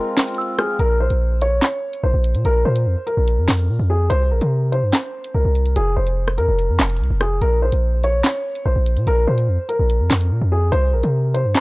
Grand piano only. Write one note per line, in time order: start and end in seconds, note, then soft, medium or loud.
0.00 0.55 A#4 medium
0.59 0.76 G#4 medium
0.80 0.97 A#4 medium
1.00 1.39 C5 medium
1.42 2.00 C#5 medium
2.04 2.42 C5 medium
2.45 2.62 A#4 medium
2.65 3.04 C5 medium
3.07 3.86 A#4 medium
3.90 4.07 G#4 medium
4.10 4.27 C5 loud
4.31 4.70 A#4 medium
4.72 5.31 C5 medium
5.34 5.73 A#4 medium
5.76 5.93 G#4 medium
5.97 6.35 C5 medium
6.38 7.17 A#4 medium
7.21 7.38 G#4 medium
7.42 7.59 A#4 medium
7.62 8.01 C5 medium
8.04 8.62 C#5 medium
8.66 9.04 C5 medium
9.07 9.24 A#4 loud
9.27 9.66 C5 medium
9.69 10.48 A#4 medium
10.52 10.69 G#4 medium
10.72 10.89 C5 loud
10.93 11.32 A#4 medium
11.34 11.60 C5 medium